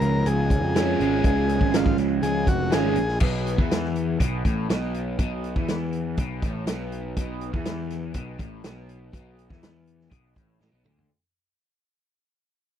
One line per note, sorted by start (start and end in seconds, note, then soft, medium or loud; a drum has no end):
0.00 0.22 C#2 medium
0.00 0.74 C#3 medium
0.00 0.74 F3 medium
0.00 0.74 G#3 medium
0.00 0.75 C#4 loud
0.00 0.75 F4 loud
0.00 0.28 A#4 medium
0.00 closed hi-hat medium
0.26 0.63 C#2 loud
0.26 1.25 G#4 medium
0.26 closed hi-hat loud
0.50 kick medium
0.50 closed hi-hat medium
0.63 0.94 F2 loud
0.75 0.98 C#3 medium
0.75 0.98 F3 medium
0.75 0.99 G#3 medium
0.75 0.99 C#4 loud
0.75 1.00 F4 medium
0.75 snare loud
0.75 closed hi-hat loud
0.99 1.21 G#1 medium
0.99 2.70 C#3 medium
0.99 2.71 F3 medium
0.99 2.72 G#3 medium
0.99 2.72 C#4 loud
0.99 2.72 F4 medium
0.99 closed hi-hat medium
1.24 1.61 C#2 loud
1.24 1.76 G#4 medium
1.24 kick loud
1.24 closed hi-hat medium
1.49 closed hi-hat medium
1.61 1.92 G#1 medium
1.61 kick medium
1.74 1.98 F4 medium
1.74 snare loud
1.74 closed hi-hat loud
1.86 kick medium
1.98 2.19 C#2 medium
1.98 snare soft
1.98 closed hi-hat medium
2.22 2.46 C#2 loud
2.22 2.48 G#4 loud
2.22 closed hi-hat medium
2.47 2.70 F1 medium
2.47 2.73 F#4 medium
2.47 kick medium
2.47 closed hi-hat medium
2.71 2.95 G#1 medium
2.71 2.95 C#3 medium
2.71 2.96 F3 medium
2.71 2.96 G#3 medium
2.71 2.97 C#4 medium
2.71 2.97 F4 medium
2.71 3.19 G#4 medium
2.71 snare loud
2.71 closed hi-hat medium
2.96 3.19 A#1 medium
2.96 closed hi-hat medium
3.09 snare soft
3.20 3.56 B1 loud
3.20 3.58 B2 loud
3.20 kick loud
3.20 crash loud
3.47 closed hi-hat medium
3.58 4.16 E2 medium
3.58 4.20 E3 loud
3.58 kick loud
3.71 snare loud
3.71 closed hi-hat loud
3.84 snare soft
3.96 closed hi-hat medium
4.20 4.43 B1 loud
4.20 4.44 B2 loud
4.20 kick loud
4.20 closed hi-hat loud
4.45 4.68 A1 loud
4.45 4.69 A2 loud
4.45 kick loud
4.45 closed hi-hat medium
4.70 5.16 B1 loud
4.70 5.18 B2 loud
4.70 snare loud
4.70 closed hi-hat loud
4.94 closed hi-hat medium
5.19 5.54 B1 loud
5.19 5.55 B2 loud
5.19 kick loud
5.19 closed hi-hat loud
5.44 closed hi-hat medium
5.56 6.14 E2 medium
5.56 6.18 E3 medium
5.56 kick loud
5.68 snare loud
5.68 closed hi-hat medium
5.93 closed hi-hat medium
6.17 6.41 B1 medium
6.17 6.42 B2 loud
6.17 kick loud
6.17 closed hi-hat medium
6.42 6.66 A1 medium
6.42 6.67 A2 loud
6.42 kick loud
6.42 closed hi-hat medium
6.67 7.13 B1 loud
6.67 7.16 B2 loud
6.67 snare loud
6.67 closed hi-hat loud
6.92 closed hi-hat medium
7.17 7.51 B1 loud
7.17 7.53 B2 loud
7.17 kick loud
7.17 closed hi-hat loud
7.41 closed hi-hat medium
7.53 8.11 E2 loud
7.53 8.14 E3 loud
7.53 kick loud
7.65 snare loud
7.65 closed hi-hat loud
7.90 snare soft
7.90 closed hi-hat medium
8.14 8.38 B1 loud
8.14 8.39 B2 loud
8.14 kick loud
8.14 closed hi-hat loud
8.39 8.62 A1 loud
8.39 8.63 A2 loud
8.39 kick loud
8.39 closed hi-hat medium
8.64 9.10 B1 medium
8.64 9.12 B2 loud
8.64 snare loud
8.64 closed hi-hat loud
8.89 closed hi-hat medium
9.13 9.48 B1 loud
9.13 9.49 B2 loud
9.13 kick loud
9.13 closed hi-hat loud
9.39 closed hi-hat medium
9.50 10.08 E2 medium
9.50 10.10 E3 medium
9.50 kick loud
9.50 snare soft
9.63 snare loud
9.63 closed hi-hat loud
9.87 closed hi-hat medium
10.01 snare soft
10.11 10.35 B1 loud
10.11 10.35 B2 loud
10.11 kick loud
10.11 closed hi-hat loud
10.36 10.59 A1 loud
10.36 10.59 A2 loud
10.36 kick loud
10.36 closed hi-hat medium
10.61 10.72 A1 medium
10.61 10.72 A2 loud
10.61 snare medium
10.72 10.84 B1 medium
10.72 10.84 B2 loud
10.84 11.08 D2 loud
10.84 11.09 D3 loud
10.84 mid tom medium
10.98 floor tom loud